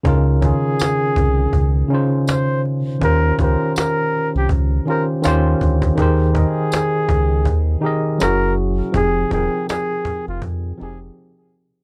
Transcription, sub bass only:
X:1
M:4/4
L:1/16
Q:"Swing 16ths" 1/4=81
K:Dblyd
V:1 name="Sub bass" clef=bass
D,,3 z3 C,,2 D,,2 z6 | E,,2 D,, z4 C,, D,,2 z2 E,,2 =D,,2 | E,,3 z3 D,,2 E,,2 z2 _G,,,4 | F,,,2 E,,, z4 F,,, F,,2 F,,,2 z4 |]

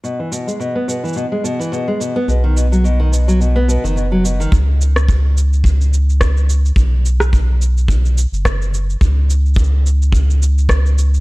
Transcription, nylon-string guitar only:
X:1
M:4/4
L:1/16
Q:"Swing 16ths" 1/4=107
K:Bmix
V:1 name="Nylon-string guitar" clef=bass
B,, E, B,, G, B,, B, B,, E, B,, G, B,, E, B,, G, B,, B, | B,, D, B,, F, B,, D, B,, F, B,, B, B,, D, B,, F, B,, D, | z16 | z16 |
z16 |]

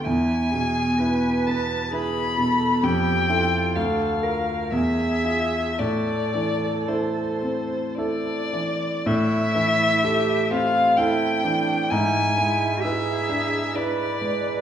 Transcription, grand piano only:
X:1
M:3/4
L:1/8
Q:1/4=64
K:Am
V:1 name="Grand piano"
E,, B,, [EB] B, [EB] B,, | F,, [EA] D,, [F_B] E,, [F^G] | A,, E, [EA] C [EA] E, | A,, E, [EA] C [EA] E, |
^G,, ^G, [EB] D [EB] G, |]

